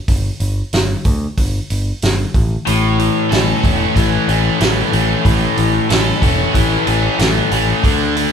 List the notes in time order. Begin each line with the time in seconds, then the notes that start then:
0.08 G1, kick, open hi-hat
0.40 G1, open hi-hat
0.73 G1, snare, open hi-hat
1.05 D2, kick, open hi-hat
1.38 G1, kick, open hi-hat
1.70 G1, open hi-hat
2.02 G1, snare, open hi-hat
2.34 A1, kick, open hi-hat
2.67 A1 A2, open hi-hat
2.99 E3, open hi-hat
3.31 A1 C#4 A4, snare, open hi-hat
3.64 E1 A3 C#4, kick, open hi-hat
3.95 A1 E3, kick, open hi-hat
4.28 A1 A3 C#4, open hi-hat
4.60 A1 E3 A3, snare, open hi-hat
4.92 A1 A3 C#4, open hi-hat
5.25 A1 A2, kick, open hi-hat
5.57 A1 E3, open hi-hat
5.89 A1 C#4 A4, snare, open hi-hat
6.22 E1 A3 C#4, kick, open hi-hat
6.53 A1 E3, kick, open hi-hat
6.86 A1 A3 C#4, open hi-hat
7.18 A1 E3 A3, snare, open hi-hat
7.51 A1 A3 C#4, open hi-hat
7.84 D2 D3, kick, open hi-hat
8.17 D3, open hi-hat